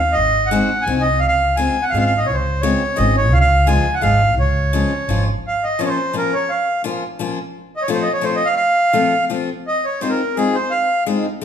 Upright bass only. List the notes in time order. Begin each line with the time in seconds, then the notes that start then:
Already playing: D#2
0.16 G#1
0.87 C2
1.22 C#2
1.92 G#1
2.30 C#2
2.99 G#1
3.32 C#2
4.04 G#1
4.37 C#2
5.08 G#1